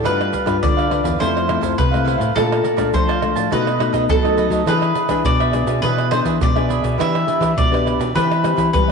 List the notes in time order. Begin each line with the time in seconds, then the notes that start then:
0.03 G2 G3 D4 F4 G4 B4 F5, pandeiro, tamborim, shaker, surdo
0.21 pandeiro, tamborim, shaker
0.32 D4 G4 B4 F5, pandeiro, shaker, surdo
0.46 G2 D4 F4 G4 B4 F5, pandeiro, tamborim, shaker, surdo
0.63 D3 D5, pandeiro, shaker, surdo
0.77 G4 B4 F5, pandeiro, tamborim, shaker
0.90 D4 F4 G4 B4 F5, pandeiro, tamborim
1.04 E2 G4 B4 F5, pandeiro, shaker, surdo
1.19 F2 F3 A3 C4 E4 A4 C5 F5, pandeiro, shaker, surdo
1.37 pandeiro, tamborim, shaker
1.47 A3 C4 E4 A4 C5 F5, pandeiro, tamborim
1.61 F2 E4 A4 C5 F5, pandeiro, shaker, surdo
1.78 C3 B4, pandeiro, shaker, surdo
1.91 A3 C4 E4 A4 C5 F5, pandeiro, tamborim, shaker
2.04 E4 A4 C5 F5, pandeiro
2.18 A2 A4 C5 F5, pandeiro, shaker, surdo
2.35 A#2 A3 D4 F4 A4 A#4 D5 F5 A5, pandeiro, tamborim, shaker, surdo
2.52 pandeiro, tamborim, shaker
2.64 A#4 D5 F5 A5, pandeiro
2.77 A#2 A3 D4 F4 A#4 D5 F5 A5, pandeiro, tamborim, shaker, surdo
2.94 F3 C5, pandeiro, shaker, surdo
3.08 D5 F5 A5, pandeiro, tamborim, shaker
3.21 A3 D4 F4 A#4 D5 F5 A5, pandeiro, tamborim
3.35 A2 D5 F5 A5, pandeiro, shaker, surdo
3.51 B2 A3 D#4 F#4 A4 B4 D#5, pandeiro, shaker, surdo
3.67 pandeiro, tamborim, shaker
3.79 A3 D#4 F#4 A4 B4 D#5, pandeiro, tamborim
3.92 B2 D#4 A4 B4 D#5, pandeiro, shaker, surdo
4.09 F#3 A4, pandeiro, shaker, surdo
4.23 A3 D#4 F#4 A4 B4 D#5, pandeiro, tamborim, shaker
4.37 D#4 A4 B4 D#5, pandeiro
4.50 F#3 A4 B4 D#5, pandeiro, shaker, surdo
4.66 E3 D4 G#4 B4 E5, pandeiro, tamborim, shaker, surdo
4.82 pandeiro, tamborim, shaker
4.95 D4 G#4 B4 E5, pandeiro, shaker
5.09 E3 D4 G#4 B4 E5, pandeiro, tamborim, shaker, surdo
5.25 B2 D5, pandeiro, shaker, surdo
5.40 G#4 B4 E5, pandeiro, tamborim, shaker
5.53 D4 G#4 B4 E5, pandeiro, tamborim, shaker
5.67 B2 G#4 B4 E5, pandeiro, shaker, surdo
5.82 B2 E3 D4 G#4 B4 E5, pandeiro, shaker, surdo
5.98 pandeiro, tamborim, shaker
6.11 D4 G#4 B4 C5 E5, pandeiro, tamborim, shaker
6.25 E3 D4 G#4 B4 E5, pandeiro, shaker, surdo
6.41 B2 D5, pandeiro, shaker, surdo
6.55 D4 G#4 B4 E5, pandeiro, tamborim, shaker
6.68 D4 G#4 B4 E5, pandeiro, shaker
6.82 B2 G#4 B4 E5, pandeiro, shaker, surdo
6.98 E3 D4 E4 G4 B4 D5 E5, pandeiro, tamborim, shaker, surdo
7.15 pandeiro, tamborim, shaker
7.27 D4 E4 G4 B4 D5, pandeiro, shaker
7.40 E3 E4 G4 B4 D5, pandeiro, tamborim, shaker, surdo
7.56 B2 D5, pandeiro, shaker, surdo
7.71 D4 G4 B4 D5, pandeiro, tamborim, shaker
7.84 E4 G4 B4 D5, pandeiro, tamborim
7.99 B2 G4 B4 D5, pandeiro, shaker, surdo
8.15 E3 C4 G4 B4 C5 E5, pandeiro, shaker, surdo
8.31 pandeiro, tamborim, shaker
8.43 C4 G4 B4 C5 E5, pandeiro, tamborim, shaker
8.56 E3 G4 B4 C5 E5, pandeiro, shaker, surdo
8.73 E3 G3 B4, pandeiro, shaker, surdo
8.88 C4 G4 B4 E5